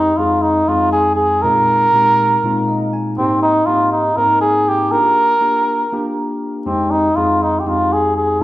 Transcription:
0.00 0.11 F2 medium
0.00 0.11 G#3 soft
0.00 0.11 C4 medium
0.00 0.11 D#4 medium
0.00 0.20 D#4 medium
0.00 0.11 G4 medium
0.18 0.61 F2 medium
0.18 0.61 G#3 soft
0.18 0.61 C4 soft
0.18 0.61 D#4 medium
0.18 0.43 F4 medium
0.18 0.62 G#4 medium
0.42 0.70 D#4 medium
0.68 1.43 F2 medium
0.68 1.43 G#3 soft
0.68 1.43 C4 soft
0.68 1.44 D#4 soft
0.68 0.92 F4 medium
0.68 1.44 G#4 medium
0.93 1.15 G#4 medium
1.16 1.44 G#4 medium
1.42 1.86 A#2 medium
1.42 1.86 G#3 medium
1.42 1.86 C4 medium
1.42 1.86 D#4 medium
1.42 1.86 F4 medium
1.42 2.92 A#4 loud
1.93 2.35 A#2 medium
1.93 2.36 G#3 medium
1.93 2.36 C4 soft
1.93 2.36 D#4 soft
1.93 2.36 G4 medium
2.43 3.18 A#2 medium
2.43 3.18 G#3 medium
2.43 3.18 C4 medium
2.43 3.18 D#4 medium
2.43 3.19 F4 medium
2.68 2.91 D#5 medium
2.93 3.16 G#5 medium
3.18 3.60 G#2 medium
3.18 3.60 A#3 medium
3.18 3.41 C4 medium
3.18 3.60 C4 medium
3.18 3.60 D#4 medium
3.18 3.61 G4 medium
3.43 3.68 D#4 medium
3.66 4.09 G#2 medium
3.66 4.10 A#3 medium
3.66 4.10 C4 medium
3.66 4.10 D#4 medium
3.66 3.91 F4 medium
3.66 4.10 G4 medium
3.92 4.18 D#4 medium
4.17 4.92 G#2 medium
4.17 4.90 A#3 medium
4.17 4.92 C4 medium
4.17 4.93 D#4 medium
4.17 4.40 A#4 medium
4.17 4.93 A#4 medium
4.41 4.70 G#4 medium
4.68 4.93 G4 medium
4.91 5.34 A#3 medium
4.91 5.34 D4 medium
4.91 5.34 F4 medium
4.91 5.34 G4 medium
4.91 6.41 A#4 medium
5.41 5.83 A#3 medium
5.41 5.83 D4 soft
5.41 5.84 F4 soft
5.41 5.84 G4 medium
5.92 6.66 A#3 medium
5.92 6.67 D4 medium
5.92 6.67 F4 medium
5.92 6.66 G4 medium
6.65 7.08 F2 medium
6.65 7.08 G#3 medium
6.65 6.92 C4 medium
6.65 7.08 C4 medium
6.65 7.09 D#4 medium
6.65 7.09 G4 medium
6.91 7.17 D#4 medium
7.16 7.58 F2 medium
7.16 7.58 G#3 soft
7.16 7.59 C4 soft
7.16 7.59 D#4 medium
7.16 7.44 F4 medium
7.16 7.59 G#4 medium
7.42 7.61 D#4 medium
7.59 7.70 G4 medium
7.66 8.40 F2 medium
7.66 8.39 G#3 soft
7.66 8.39 C4 soft
7.66 8.40 D#4 soft
7.66 7.94 F4 medium
7.66 8.41 G4 medium
7.93 8.17 G#4 medium
8.17 8.44 G#4 medium
8.40 8.44 A#2 medium
8.40 8.44 G#3 medium
8.40 8.44 C4 medium

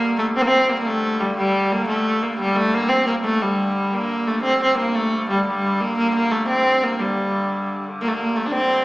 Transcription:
0.00 3.94 G2 medium
0.00 3.93 D3 medium
0.00 0.15 A#3 medium
0.18 0.26 A3 medium
0.36 0.43 C4 medium
0.42 0.49 A#3 medium
0.47 0.71 C4 medium
0.69 0.78 A#3 medium
0.79 0.88 A#3 medium
0.87 1.22 A3 medium
1.20 1.37 G3 medium
1.37 1.73 G3 medium
1.72 1.88 A#3 medium
1.89 2.24 A3 medium
2.23 2.40 A#3 medium
2.40 2.58 G3 medium
2.56 2.76 A3 medium
2.74 2.90 A#3 medium
2.89 3.06 C4 medium
3.07 3.14 A#3 medium
3.25 3.43 A3 medium
3.42 3.95 G3 medium
3.93 8.01 G2 medium
3.93 8.01 D3 medium
3.93 4.29 A#3 medium
4.28 4.43 A3 medium
4.44 4.60 C4 medium
4.63 4.77 C4 medium
4.78 4.97 A#3 medium
4.95 5.29 A3 medium
5.30 5.46 G3 medium
5.47 5.82 G3 medium
5.81 5.98 A#3 medium
5.98 6.14 A#3 medium
6.15 6.33 A#3 medium
6.31 6.48 A3 medium
6.49 6.85 C4 medium
6.84 7.01 A#3 medium
7.00 7.84 G3 medium
8.01 8.85 G2 medium
8.01 8.85 D3 medium
8.01 8.10 A#3 medium
8.08 8.16 A3 medium
8.14 8.37 A#3 medium
8.36 8.47 A3 medium
8.46 8.53 D4 medium
8.51 8.85 C4 medium

